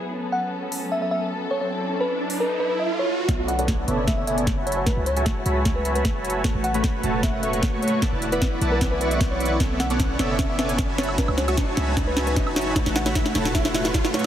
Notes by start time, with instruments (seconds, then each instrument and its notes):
Already playing: string section F#3 A3 B3 E4 G#4
0.12 string section C#4 A4, riser
0.32 fm electric piano F#5
0.72 open hi-hat
0.92 fm electric piano E5
1.02 fm electric piano E5
1.11 fm electric piano E5
1.51 fm electric piano C#5
1.61 fm electric piano C#5
1.71 string section D4 E4
2.01 fm electric piano B4
2.30 open hi-hat
2.40 fm electric piano B4
2.60 fm electric piano B4
2.69 fm electric piano B4
2.80 fm electric piano E5
2.99 fm electric piano C#5
3.28 808-style bass B1, string section D3 A3 C#4 E4, supersaw synth B3 A4 C#5 D5 E5, kick, snare, closed hi-hat, riser
3.48 fm electric piano F#5, closed hi-hat
3.59 supersaw synth B3 A4 C#5 D5 F#5, closed hi-hat
3.68 kick, snare, closed hi-hat
3.88 808-style bass F#1, supersaw synth B3 A4 C#5 D5 E5, closed hi-hat
4.07 supersaw synth B3 A4 E5, fm electric piano E5, kick, snare, closed hi-hat
4.18 fm electric piano E5
4.27 supersaw synth B3 A4 C#5 D5 G#5, fm electric piano E5, closed hi-hat
4.38 closed hi-hat
4.47 808-style bass F#1, kick, snare, closed hi-hat
4.57 supersaw synth F#4 C#5 E5 G#5 A5 B5
4.67 string section A2 G#3 B3 E4, fm electric piano C#5, closed hi-hat
4.72 closed hi-hat
4.77 fm electric piano C#5
4.86 supersaw synth F#4 C#5, fm electric piano B4, kick, snare, closed hi-hat
4.97 808-style bass C#2
5.06 fm electric piano C#5, closed hi-hat
5.16 supersaw synth F#4 C#5 E5 G#5 A5 C#6, closed hi-hat
5.26 kick, snare, closed hi-hat
5.46 808-style bass C#2, supersaw synth F#4 C#5 E5 G#5 A5 B5, closed hi-hat
5.65 supersaw synth F#4 C#5 E5 G#5 A5, kick, snare, closed hi-hat
5.76 fm electric piano B4
5.85 supersaw synth F#4 C#5 E5 G#5 A5 B5, closed hi-hat
5.95 fm electric piano B4, closed hi-hat
6.05 808-style bass F#1, kick, snare, closed hi-hat
6.15 supersaw synth F#4 C#5 E5 G#5 A5 B5
6.25 closed hi-hat
6.30 closed hi-hat
6.44 string section C#3 A3 F#4, supersaw synth A3 F#4 C#5 A5, kick, snare, closed hi-hat
6.55 808-style bass A1
6.64 fm electric piano F#5, closed hi-hat
6.74 supersaw synth A3 F#4 B4 C#5 B5, closed hi-hat
6.84 kick, snare, closed hi-hat
7.03 808-style bass E1, supersaw synth A3 F#4 B4 C#5 A5, closed hi-hat
7.23 supersaw synth A3 F#4 B4 C#5, fm electric piano E5, kick, snare, closed hi-hat
7.34 fm electric piano E5
7.43 supersaw synth A3 F#4 B4 C#5 C#6, fm electric piano E5, closed hi-hat
7.53 closed hi-hat
7.63 kick, snare, closed hi-hat
7.73 supersaw synth A3 F#4 B4 C#5 C#6
7.82 fm electric piano C#5, closed hi-hat
7.88 closed hi-hat
7.93 fm electric piano C#5
8.02 string section D3 E4, supersaw synth E4 B4 D5 F#5 A5, kick, snare, closed hi-hat
8.12 808-style bass E1
8.22 closed hi-hat
8.32 supersaw synth E4 B4 D5 F#5 B5, fm electric piano B4, closed hi-hat
8.42 kick, snare, closed hi-hat
8.61 808-style bass B1, supersaw synth E4 B4 D5 F#5 A5, closed hi-hat
8.72 fm electric piano B4
8.81 supersaw synth E4 B4 F#5, kick, snare, closed hi-hat
8.91 fm electric piano B4
9.01 supersaw synth E4 B4 D5 F#5 C#6, fm electric piano B4, closed hi-hat
9.11 fm electric piano E5, closed hi-hat
9.21 808-style bass B1, kick, snare, closed hi-hat
9.31 supersaw synth E4 B4 D5 F#5 C#6, fm electric piano C#5
9.40 closed hi-hat
9.46 closed hi-hat
9.60 808-style bass B1, supersaw synth B3 A4 C#5 D5 E5, string section C#4, kick, snare, closed hi-hat
9.80 fm electric piano F#5, snare, closed hi-hat
9.90 supersaw synth B3 A4 C#5 D5 F#5, closed hi-hat
10.00 kick, snare, closed hi-hat
10.19 808-style bass F#1, supersaw synth B3 A4 C#5 D5 E5, snare, closed hi-hat
10.39 supersaw synth A4 C#5 D5 E5, fm electric piano E5, kick, snare, closed hi-hat
10.50 fm electric piano E5
10.59 supersaw synth B3 A4 C#5 D5 G#5, fm electric piano E5, snare, closed hi-hat
10.69 closed hi-hat
10.79 808-style bass F#1, kick, snare, closed hi-hat
10.89 supersaw synth F#4 C#5 E5 G#5 A5 B5
10.98 string section A2 G#3 B3, fm electric piano C#5, snare, closed hi-hat
11.03 closed hi-hat
11.09 fm electric piano C#5, high woodblock
11.18 supersaw synth F#4 C#5 E5 G#5 A5 B5, fm electric piano B4, kick, snare, closed hi-hat
11.28 808-style bass C#2, high woodblock
11.38 fm electric piano C#5, snare, closed hi-hat
11.48 supersaw synth F#4 C#5 E5 G#5 A5 C#6, closed hi-hat, high woodblock
11.57 kick, snare, closed hi-hat
11.77 808-style bass C#2, supersaw synth F#4 C#5 E5 G#5 A5 B5, snare, closed hi-hat
11.97 supersaw synth F#4 C#5 E5 G#5 A5 B5, kick, snare, closed hi-hat
12.07 fm electric piano B4
12.17 supersaw synth F#4 C#5 E5 G#5 A5 B5, snare, closed hi-hat
12.27 fm electric piano B4, closed hi-hat
12.36 808-style bass F#1, kick, snare, closed hi-hat
12.47 supersaw synth F#4 C#5 E5 G#5 A5 B5, high woodblock
12.56 snare, closed hi-hat
12.61 closed hi-hat
12.76 string section C#3 A3 F#4, supersaw synth A3 B4, kick, snare, closed hi-hat
12.86 808-style bass A1, snare
12.96 fm electric piano F#5, snare, closed hi-hat
13.06 supersaw synth A3 F#4 B4 C#5 B5, snare, closed hi-hat
13.15 kick, snare, closed hi-hat
13.26 snare
13.35 808-style bass E1, supersaw synth A3 F#4 B4 C#5 A5, snare, closed hi-hat
13.45 snare
13.55 supersaw synth A3 F#4 B4 C#5 F#5, fm electric piano E5, kick, snare, closed hi-hat
13.65 fm electric piano E5, snare
13.74 supersaw synth A3 F#4 B4 C#5 C#6, fm electric piano E5, snare, closed hi-hat
13.85 snare, closed hi-hat
13.94 kick, snare, closed hi-hat
14.04 supersaw synth A3 F#4 B4 C#5 C#6, snare
14.14 fm electric piano C#5, snare, closed hi-hat
14.19 closed hi-hat